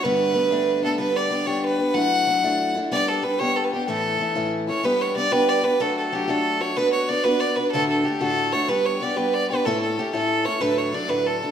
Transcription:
<<
  \new Staff \with { instrumentName = "Fiddle" } { \time 6/8 \key g \lydian \tempo 4. = 125 b'2~ b'8 a'8 | b'8 d''4 cis''8 b'4 | fis''2~ fis''8 r8 | d''8 a'8 b'8 cis''8 a'16 b'16 g'8 |
a'2 r8 cis''8 | b'8 cis''8 d''8 b'8 d''8 b'8 | a'8 a'8 g'8 a'4 cis''8 | b'8 cis''8 d''8 b'8 d''8 b'8 |
a'8 a'8 g'8 a'4 cis''16. cis''32 | b'8 cis''8 d''8 b'8 d''8 b'8 | a'8 a'8 g'8 a'4 cis''8 | b'8 cis''8 d''8 b'8 a'4 | }
  \new Staff \with { instrumentName = "Steel-string acoustic guitar" } { \time 6/8 \key g \lydian <g, d g a b d'>4 <g a b d'>8 <g, d g a b d'>4 <g a b d'>8 | <g b d' g'>4 <g b d' g'>8 <g b d' g'>4 <b d' g'>8 | <fis a d' e'>4 <fis a d' e'>8 <fis a d' e'>4 <a d' e'>8 | <g b d' g'>4 <g b d' g'>8 <g b d' g'>4 <b d' g'>8 |
<a, e a cis' e'>4 <e a cis' e'>8 <a, e a cis' e'>4 <a cis' e'>8 | <g b d' g'>4 <g b d' g'>8 <g b d' g'>4 <b d' g'>8 | <fis a d' fis'>4 <fis a d' fis'>8 <fis a d' fis'>4 <a d' fis'>8 | <b d' fis' b'>4 <b d' fis' b'>8 <b d' fis' b'>4 <d' fis' b'>8 |
<d, a, d a d' fis'>4 <d a d' fis'>8 <d, a, d a d' fis'>4 <d a d' fis'>8 | <g b d' g'>4 <g b d' g'>8 <g b d' g'>4 <b d' g'>8 | <a, a cis' e' a'>4 <a cis' e' a'>8 <a, a cis' e' a'>4 <cis' e' a'>8 | <d, a, fis a d' a'>4 <fis a d' a'>8 <d, a, fis a d' a'>4 <fis a d' a'>8 | }
>>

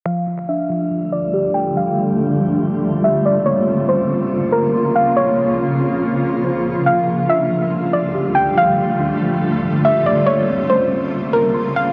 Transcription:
<<
  \new Staff \with { instrumentName = "Synth pluck" } { \time 4/4 \key f \major \tempo 4 = 141 f''4 e''4. d''4 g''8 | f''2 r4 e''8 d''8 | des''4 c''4. bes'4 f''8 | des''2 r2 |
f''4 e''4. d''4 g''8 | f''2 r4 e''8 d''8 | des''4 c''4. bes'4 f''8 | }
  \new Staff \with { instrumentName = "Synth keys" } { \time 4/4 \key f \major f8 f8 d'8 f8 f8 f8 g'4 | f8 f8 d'8 f8 f8 f8 g'4 | bes8 c'8 des'8 c'4 bes8 c'''4~ | c'''4 des'8 c'8 c'8 c'8 c''4 |
f8 f8 d'8 f8 f8 f8 g'4 | f8 f8 d'8 f8 f8 f8 g'4 | bes8 c'8 des'8 c'4 bes8 c'''4 | }
  \new Staff \with { instrumentName = "Ambient pad" } { \clef bass \time 4/4 \key f \major << { f'1~ | f'1~ | f'1~ | f'1~ |
f'1~ | f'1 | f'1 | } \\ { <d g a>1~ | <d g a>1 | <des bes>1~ | <des bes>1 |
<d g a>1~ | <d g a>1 | <des bes>1 | } >> }
>>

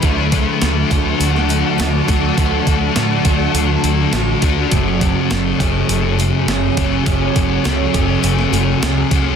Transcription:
<<
  \new Staff \with { instrumentName = "Ambient pad" } { \time 4/4 \key d \lydian \tempo 4 = 102 <fis' d'' a''>1~ | <fis' d'' a''>1 | <fis' cis'' gis''>1~ | <fis' cis'' gis''>1 | }
  \new Staff \with { instrumentName = "Clean electric guitar" } { \time 4/4 \key d \lydian <d fis a d' fis'>4. <d fis a d' fis'>4. <d fis a d' fis'>4 | <d fis a d' fis'>4. <d fis a d' fis'>4. <d fis a d' fis'>4 | <fis, cis fis a cis' gis'>4. <fis, cis fis a cis' gis'>4. <fis, cis fis a cis' gis'>4 | <fis, cis fis a cis' gis'>4. <fis, cis fis a cis' gis'>4. <fis, cis fis a cis' gis'>4 | }
  \new Staff \with { instrumentName = "Twelve-string acoustic guitar" } { \time 4/4 \key d \lydian a8 a8 a8 d'8 a8 a8 fis'8 d'8 | a8 a8 a8 d'8 a8 a8 fis'8 d'8 | a8 a8 a8 cis'8 a8 a8 gis'8 cis'8 | a8 a8 a8 cis'8 a8 a8 gis'8 cis'8 | }
  \new Staff \with { instrumentName = "Distorted electric guitar" } { \clef bass \time 4/4 \key d \lydian <d a d'>2.~ <d a d'>8 <d a d'>8 | <d a d'>2.~ <d a d'>8 <d a d'>8 | <fis, cis fis>2.~ <fis, cis fis>8 <fis, cis fis>8 | <fis, cis fis>2.~ <fis, cis fis>8 <fis, cis fis>8 | }
  \new Staff \with { instrumentName = "Fingered electric bass" } { \clef bass \time 4/4 \key d \lydian d,4 d,8 d,8 d,4 d,8 d,8 | d,8 d,8 a,8 d,8 d,8 d,8 a,,8 d,8 | fis,,4 fis,,8 fis,,8 fis,,4 fis,,8 fis,,8 | fis,,8 fis,,8 cis,8 fis,,8 fis,,8 fis,,8 cis,8 cis,8 | }
  \new DrumStaff \with { instrumentName = "Drums" } \drummode { \time 4/4 <hho bd>8 <hho bd>8 <hho sn>8 <hho bd sn>8 hho16 sn16 hho8 <hho sn>8 <hho bd>8 | <hho bd>8 <hho bd>8 <hho sn>8 <hho bd>8 hho8 hho8 <hho sn>8 <hho bd>8 | <hho bd>8 <hho bd>8 <hho sn>8 <hho bd>8 hho8 hho8 <hho sn>8 <hho bd>8 | <hho bd>8 <hho bd>8 <hho sn>8 <hho bd>8 hho16 sn16 hho8 <hho sn>8 <hho bd>8 | }
>>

